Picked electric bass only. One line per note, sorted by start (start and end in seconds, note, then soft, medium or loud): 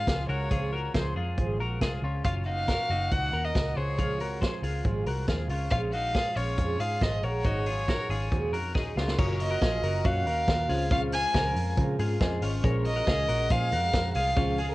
0.07 0.26 C#2 medium
0.28 0.47 C#2 medium
0.51 0.88 C#2 medium
0.94 1.13 C#2 medium
1.15 1.34 F2 medium
1.38 1.56 G#1 medium
1.59 1.81 A#1 medium
1.81 2.00 C2 medium
2.02 2.21 C#2 medium
2.25 2.76 F#1 medium
2.90 3.08 F#1 medium
3.12 3.30 C#2 medium
3.32 3.51 D#2 medium
3.55 3.74 C#2 medium
3.76 4.41 C#2 medium
4.62 4.81 C#2 medium
4.85 5.03 G#1 medium
5.06 5.25 C2 medium
5.28 5.46 D#2 medium
5.49 5.68 C#2 medium
5.72 6.23 A#1 loud
6.36 6.55 A#1 medium
6.58 6.76 F2 medium
6.79 6.98 G#2 medium
7.01 7.20 G#1 medium
7.23 7.41 A#1 medium
7.45 7.96 G#1 medium
8.09 8.28 G#1 medium
8.32 8.52 D#2 medium
8.52 8.75 F2 medium
8.75 8.93 D#2 medium
8.96 9.15 C#2 medium
9.19 9.55 F#1 loud
9.61 9.80 A#1 medium
9.82 10.01 F#1 medium
10.05 10.26 F#2 loud
10.26 10.44 D#2 medium
10.48 10.66 D#2 medium
10.69 11.24 C#2 medium
11.34 11.52 C#2 medium
11.55 11.74 F2 medium
11.77 11.96 C#3 loud
11.99 12.17 G#2 medium
12.21 12.39 F2 medium
12.41 12.60 G#1 medium
12.64 13.01 A#1 loud
13.07 13.25 C#2 medium
13.29 13.47 A#1 medium
13.50 13.73 A#2 loud
13.72 13.90 F2 medium
14.15 14.33 C2 medium
14.36 14.73 C#2 loud